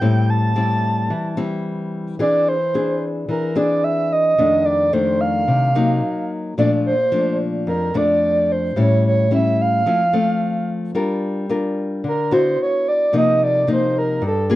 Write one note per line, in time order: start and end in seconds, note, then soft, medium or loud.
0.00 1.08 A2 medium
0.00 0.52 G3 medium
0.00 0.52 C4 medium
0.00 0.52 E4 medium
0.00 0.31 G5 medium
0.30 1.39 A5 loud
0.56 1.33 G3 medium
0.56 1.34 C4 medium
0.56 1.34 E4 medium
1.10 2.17 E3 medium
1.37 2.15 G3 medium
1.37 2.15 C4 medium
1.37 2.15 E4 medium
2.19 3.26 E3 medium
2.19 2.55 C4 medium
2.19 2.55 D4 soft
2.19 2.55 G#4 medium
2.19 2.50 D5 loud
2.48 3.02 C5 medium
2.74 3.52 C4 medium
2.74 3.52 D4 medium
2.74 3.52 G#4 medium
3.29 4.35 E3 medium
3.29 3.55 A#4 medium
3.55 4.34 C4 medium
3.55 4.34 D4 medium
3.55 4.34 G#4 medium
3.55 3.85 D5 medium
3.84 4.14 E5 medium
4.12 4.67 D#5 medium
4.38 5.45 F2 medium
4.38 4.89 D#3 medium
4.38 4.89 A3 medium
4.38 4.89 D4 medium
4.65 4.95 D5 medium
4.93 5.71 D#3 medium
4.93 5.71 A3 medium
4.93 5.71 D4 medium
4.93 5.22 C5 medium
5.21 6.30 F5 loud
5.48 6.00 C3 medium
5.75 6.53 F#3 medium
5.75 6.53 A#3 medium
5.75 6.53 D#4 medium
6.58 7.64 A#2 medium
6.58 6.93 F3 medium
6.58 6.93 A3 medium
6.58 6.93 D4 medium
6.58 6.71 D5 loud
6.86 7.36 C5 loud
7.12 7.90 F3 medium
7.12 7.90 A3 soft
7.12 7.90 D4 medium
7.67 8.73 F2 medium
7.67 7.99 A#4 medium
7.94 8.72 F3 medium
7.94 8.72 A3 medium
7.94 8.72 D4 medium
7.94 8.53 D5 loud
8.52 8.78 C5 medium
8.76 9.83 A2 medium
8.76 9.27 G3 medium
8.76 9.27 C#4 medium
8.76 9.27 E4 medium
8.80 9.04 C#5 medium
9.07 9.31 C#5 medium
9.31 9.83 G3 soft
9.31 9.84 C#4 medium
9.31 9.84 E4 medium
9.31 9.63 E5 loud
9.62 10.69 F5 loud
9.86 10.92 F3 medium
9.86 10.02 A3 medium
9.86 10.02 C4 medium
9.86 10.02 E4 medium
10.13 10.91 A3 medium
10.13 10.91 C4 medium
10.95 12.01 G3 medium
10.95 11.45 D4 medium
10.95 11.45 F4 soft
10.95 11.46 A#4 medium
11.49 12.04 D4 medium
11.49 12.04 F4 soft
11.49 12.04 A#4 medium
12.04 12.56 D3 medium
12.08 12.33 A#4 medium
12.31 13.09 B3 medium
12.31 13.09 E4 medium
12.31 13.09 F#4 medium
12.31 12.59 C5 medium
12.62 12.87 C#5 medium
12.88 13.14 D5 medium
13.13 14.20 C3 medium
13.13 13.63 F3 medium
13.13 13.64 A#3 medium
13.13 13.64 D#4 medium
13.17 13.42 D#5 medium
13.43 13.69 D5 medium
13.67 14.22 F3 medium
13.67 14.22 A#3 medium
13.67 14.22 D#4 medium
13.73 13.97 C5 medium
13.98 14.23 A#4 medium
14.22 14.56 G2 medium
14.27 14.51 A4 medium
14.50 14.56 A#3 medium
14.50 14.56 F4 medium
14.50 14.56 G#4 medium